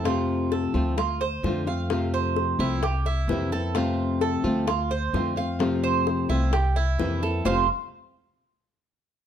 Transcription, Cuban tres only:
X:1
M:4/4
L:1/8
Q:1/4=130
K:F
V:1 name="Cuban tres"
F2 A2 F c2 f- | f c2 E G E2 A | F2 A2 F c2 f- | f c2 E G E2 A |
[Fcf] z6 z |]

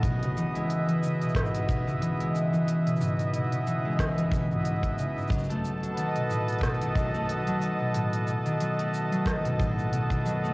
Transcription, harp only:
X:1
M:4/4
L:1/16
Q:"Swing 16ths" 1/4=91
K:Bmix
V:1 name="Harp" clef=bass
B,, C, E, G,2 E, C, B,, G,,2 B,, C, E, G,2 E, | C, B,, G,,2 B,, C, E, G,2 E, B,, G,, G,, z C, G,, | F, A,2 F, D, B,, A,,2 B,, D, F, A,2 F, D, B,, | A,,2 B,, D, F, A,2 F, D, B,, A,,2 B,, D, F, A, |]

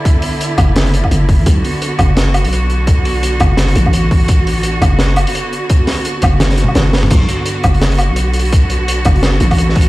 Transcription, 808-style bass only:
X:1
M:4/4
L:1/16
Q:"Swing 16ths" 1/4=170
K:Bm
V:1 name="808-style bass" clef=bass
z6 F,,,4- F,,, z F,,,3 A,,, | B,,,2 z4 F,,,4- F,,, B,,,4- B,,,- | B,,,6 F,,,4 A,,,6- | A,,,6 F,,,4- F,,, z4 z |
z6 F,,,4- F,,, z F,,,4 | B,,,2 z4 F,,,4- F,,, B,,,4- B,,,- | B,,,6 F,,,4 A,,,6 |]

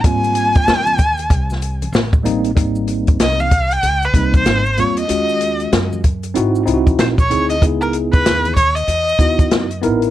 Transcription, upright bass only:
X:1
M:4/4
L:1/8
Q:"Swing 16ths" 1/4=95
K:Ab
V:1 name="Upright bass" clef=bass
A,,,2 E,,2 C,,2 =A,,,2 | A,,,2 C,,2 D,, C,, A,,, _F,, | E,,2 _G,,2 A,,, C,, B,,, =D,, | D,,2 E,,2 _F,, E,, _G,, =A,,, |]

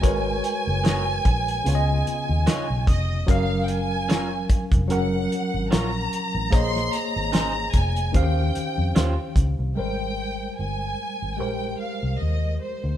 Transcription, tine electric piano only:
X:1
M:4/4
L:1/8
Q:"Swing 16ths" 1/4=74
K:Ab
V:1 name="Tine electric piano"
[A,_GB_cd]3 z [D,_CFde]3 z | [_G,DBf]3 z [G,DB_g]3 z | [B,Acde]3 z [E,DGcf]3 z | [G,A,Bc]3 z [A,GBc]3 z |]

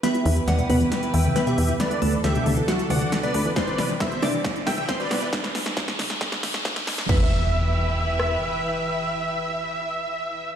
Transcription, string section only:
X:1
M:4/4
L:1/8
Q:1/4=136
K:Em
V:1 name="String section"
[E,EGB]8 | [D,DA]8 | [C,C]8 | z8 |
[E,EGB]8- | [E,EGB]8 |]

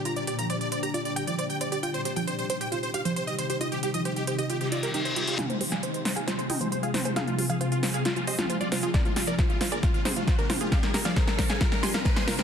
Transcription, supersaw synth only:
X:1
M:4/4
L:1/16
Q:1/4=135
K:Fdor
V:1 name="Supersaw synth"
b d d b d d d b d d g d d g d d | g c c g c c c g c c f c c e c c | e G G e G G G e G G d G G c G G | [fa] c c [fa] c c c [fa] c c [eg] c c [Af] c c |
[Af] F F [Af] F F F [Af] F F [ce] F F [Fd] F F | [Bd] F F [Bd] F F F [Bd] F F [Ac] F F [DB] F F | [df] B B [df] B B B [fa] B B [ac'] B B [ac'] B B |]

